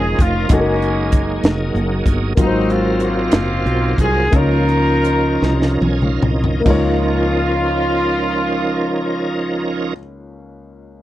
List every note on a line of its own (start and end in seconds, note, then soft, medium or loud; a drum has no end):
0.00 0.16 E1 medium
0.00 0.52 C#3 medium
0.00 0.48 F3 medium
0.00 0.45 A#3 medium
0.00 0.48 C#4 medium
0.00 0.46 D#4 medium
0.00 0.47 D#4 medium
0.00 0.47 F4 medium
0.00 0.20 G#4 medium
0.00 0.48 A#4 medium
0.00 0.48 C#5 medium
0.19 0.47 F1 medium
0.19 0.51 F4 medium
0.19 kick medium
0.19 closed hi-hat medium
0.48 1.39 F#1 medium
0.48 2.33 F#3 medium
0.48 2.32 G#3 medium
0.48 1.41 G#3 medium
0.48 2.33 A#3 medium
0.48 1.40 A#3 medium
0.48 2.33 D#4 medium
0.48 2.34 F#4 medium
0.48 2.33 G#4 medium
0.48 kick loud
0.48 closed hi-hat medium
0.52 1.21 C#4 medium
0.52 0.58 A4 soft
0.59 2.38 A#4 medium
0.82 closed hi-hat soft
1.12 kick medium
1.12 closed hi-hat medium
1.43 1.72 F1 medium
1.43 snare medium
1.43 closed hi-hat medium
1.74 2.03 F#1 medium
1.74 closed hi-hat soft
2.05 2.34 G1 medium
2.05 kick medium
2.05 closed hi-hat medium
2.35 3.28 G#1 loud
2.35 3.29 G#2 medium
2.35 4.28 F#3 medium
2.35 4.29 F#3 medium
2.35 4.28 A#3 soft
2.35 4.29 C4 medium
2.35 3.02 C4 medium
2.35 4.28 F4 medium
2.35 4.28 F4 soft
2.35 4.29 A#4 medium
2.35 kick loud
2.35 closed hi-hat medium
2.39 3.29 F#3 medium
2.39 2.68 D#4 medium
2.39 2.45 A#4 soft
2.47 4.33 C5 medium
2.70 3.01 F4 medium
2.70 closed hi-hat soft
3.00 3.96 A#3 medium
3.00 3.95 C4 medium
3.00 3.96 F4 medium
3.00 closed hi-hat medium
3.31 3.63 F#1 medium
3.31 snare medium
3.31 closed hi-hat medium
3.65 3.96 B1 medium
3.65 closed hi-hat soft
3.98 4.30 C2 medium
3.98 4.33 G#4 medium
3.98 kick medium
3.98 closed hi-hat medium
4.30 5.38 C#2 medium
4.30 5.38 C#3 soft
4.30 6.62 F3 medium
4.30 6.59 A#3 medium
4.30 6.62 C#4 soft
4.30 6.61 D#4 medium
4.30 6.62 D#4 medium
4.30 6.62 F4 soft
4.30 6.62 A#4 medium
4.30 kick medium
4.30 closed hi-hat medium
4.35 5.78 D#4 medium
4.35 5.78 F4 medium
4.35 5.83 A#4 medium
4.35 6.63 C#5 medium
4.69 closed hi-hat soft
5.05 closed hi-hat medium
5.42 5.78 C2 medium
5.42 snare soft
5.62 snare soft
5.81 6.19 B1 medium
5.81 6.01 G#5 medium
5.81 high tom medium
6.02 6.22 F5 medium
6.02 mid tom soft
6.22 6.62 C2 medium
6.22 6.64 D#5 medium
6.22 mid tom medium
6.44 floor tom medium
6.60 9.87 A#3 medium
6.60 9.91 D#4 medium
6.66 9.92 C#2 medium
6.66 9.93 C#2 medium
6.66 9.94 F3 medium
6.66 9.93 C#4 medium
6.66 9.94 D#4 medium
6.66 9.94 F4 medium
6.66 9.94 A#4 medium
6.66 kick medium
6.66 crash medium
6.70 9.97 C#5 medium